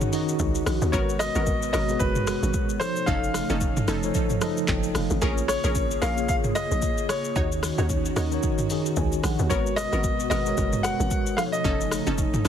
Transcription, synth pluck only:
0.93 B3 F#4 A#4
1.35 B3 F#4 A#4
1.73 B3 F#4 A#4
3.07 C#4 D#4 A4
3.50 C#4 D#4 A4
3.88 C#4 D#4 A4
5.22 C#4 G#4 A#4
5.64 C#4 G#4 A#4
6.02 C#4 G#4 A#4
7.36 D#4 F#4 C#5
7.78 D#4 F#4 C#5
8.16 D#4 F#4 C#5
9.50 B3 F#4 A#4
9.92 B3 F#4 A#4
10.30 B3 F#4 A#4
11.64 C#4 D#4 A4
12.07 C#4 D#4 A4
12.45 C#4

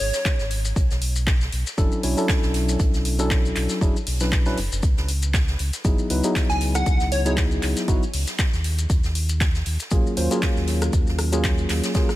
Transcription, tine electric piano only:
1.78 F#3 C#4 D4 E4 A4
2.03 F#3 C#4 D4 E4 C#5
2.17 F#3 C#4 D4 E4 A4
3.19 F#3 C#4 D4 E4 A4
3.81 F#3 C#4 D4 E4 G#4
4.21 F#3 C#4 D4 E4 B4
4.46 F#3 C#4 D4 E4 B4
5.84 F#3 B3 D#4 E4 G#4
6.10 F#3 B3 D#4 E4 B4
6.24 F#3 B3 D#4 E4 G#4
7.25 F#3 B3 D#4 E4 G#4
7.88 F#3 B3 D#4 E4 F#4
9.91 F#3 A#3 C#4 F4 G#4
10.17 F#3 A#3 C#4 F4 C5
10.31 F#3 A#3 C#4 F4 G#4
11.32 F#3 A#3 C#4 F4 G#4
11.95 F#3 A#3 C#4 F4 G#4

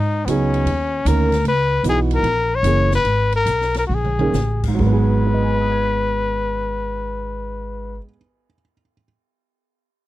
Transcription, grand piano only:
0.28 F#3 B3 D#4 G#4
1.06 D#3 A#3 C#4 A#4
1.85 E3 B3 D#4 F#4
2.64 E3 A#3 C#4 G#4
4.20 D#3 A#3 C#4 G#4
4.68 G#2
4.74 F#3
4.80 G#3
4.87 B3
4.93 G#4
5.27 B4
5.34 D#5
5.42 G#5
5.51 B5
5.61 D#6
5.72 G#6
5.84 B6

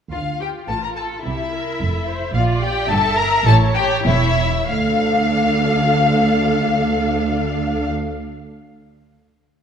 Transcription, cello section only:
0.12 D3
0.68 A2
1.25 C3
1.80 F2
2.35 A#2
2.90 G2
3.47 A2
4.06 E2
4.69 D2

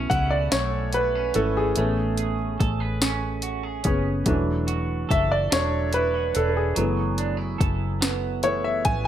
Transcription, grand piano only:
Already playing: E3 A3 C#4
0.10 F#5
0.31 D5
0.52 C#5
0.94 B4
1.35 E3 A3 C#4 A4
1.57 G#4
1.77 A3 B3 C#4
3.86 B3 C#4 G#4
4.27 F#3 A3 D4
5.11 E5
5.32 D5
5.52 F#3 A3 D4 C#5
5.94 B4
6.36 A4
6.49 A4
6.57 G#4
6.77 E3 F#3 A3 B3
8.43 E3 A3 B3 C#5
8.64 E5
8.85 G#5

